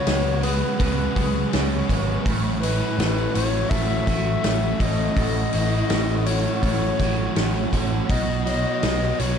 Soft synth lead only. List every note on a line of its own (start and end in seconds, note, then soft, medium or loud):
0.00 0.43 C#5 loud
0.43 0.77 B4 medium
0.78 1.85 B4 medium
2.60 3.35 B4 loud
3.34 3.70 C#5 loud
3.69 4.83 E5 loud
4.81 6.27 D#5 loud
6.26 6.60 C#5 medium
6.61 7.68 C#5 medium
8.09 8.43 D#5 medium
8.45 9.20 D#5 medium
9.19 9.38 C#5 medium